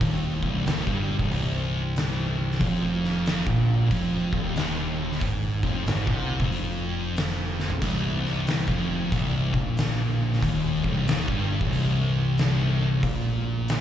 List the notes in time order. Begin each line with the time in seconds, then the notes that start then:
0.01 D#1 D#2, kick, open hi-hat
0.42 C1 C2, kick
0.65 D#1 D#2, snare, open hi-hat
0.87 G1 G2, kick
1.19 C1 C2, kick
1.31 open hi-hat
1.96 snare, open hi-hat
2.51 snare
2.60 F1 F2, kick, open hi-hat
3.04 snare
3.26 snare, open hi-hat
3.46 A#1 A#2, kick
3.91 F1 F2, kick, open hi-hat
4.33 D#1 D#2, kick
4.56 snare, open hi-hat
5.11 snare
5.21 G#1 G#2, kick, open hi-hat
5.63 F1 F2, kick, snare
5.86 G#1 G#2, snare, open hi-hat
6.07 C2 C3, kick
6.40 F1 F2, kick
6.52 open hi-hat
7.16 snare, open hi-hat
7.60 snare
7.70 floor tom
7.82 C1 C2, kick, open hi-hat, splash
8.25 snare
8.47 snare, open hi-hat
8.68 F1 F2, kick
9.12 C1 C2, kick, open hi-hat
9.54 A#1 A#2, kick
9.77 snare, open hi-hat
10.33 snare
10.42 D#1 D#2, kick, open hi-hat
10.84 C1 C2, kick
11.07 D#1 D#2, snare, open hi-hat
11.28 G1 G2, kick
11.61 C1 C2, kick
11.73 open hi-hat
12.38 snare, open hi-hat
13.02 A#1 A#2, kick, open hi-hat
13.68 snare, open hi-hat